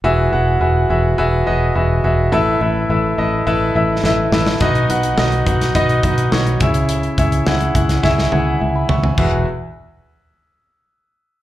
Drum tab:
CC |----------------|----------------|----------------|----------------|
HH |----------------|----------------|xxxx-xxxxxxx-xxx|xxxx-xxx--------|
SD |----------------|------------o-oo|----o--o----o---|----o--ooo------|
T1 |----------------|----------------|----------------|----------o-----|
FT |----------------|----------------|----------------|--------------oo|
BD |----------------|----------------|o-----o-o-o---o-|--o---o-o-------|

CC |x---------------|
HH |----------------|
SD |----------------|
T1 |----------------|
FT |----------------|
BD |o---------------|